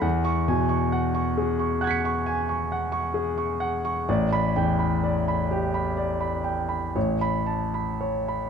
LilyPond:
<<
  \new Staff \with { instrumentName = "Grand piano" } { \time 9/8 \key a \mixolydian \tempo 4. = 43 << { r16 cis'''8 r4 r16 <fis''' gis''' b''' cis''''>2~ <fis''' gis''' b''' cis''''>8 | r16 b''8 r2 r8 b''8 r8. | } \\ { fis''8 gis''16 cis'''16 fis''16 cis'''16 gis'16 cis'''16 fis''16 cis'''16 gis''16 cis'''16 fis''16 cis'''16 gis'16 cis'''16 fis''16 cis'''16 | d''8 g''16 b''16 d''16 b''16 g'16 b''16 d''16 b''16 g''16 b''16 cis''8 a''16 b''16 cis''16 b''16 | } >> }
  \new Staff \with { instrumentName = "Grand piano" } { \clef bass \time 9/8 \key a \mixolydian e,8 b,4 r2. | a,,8 e,4 r4. a,,4. | }
>>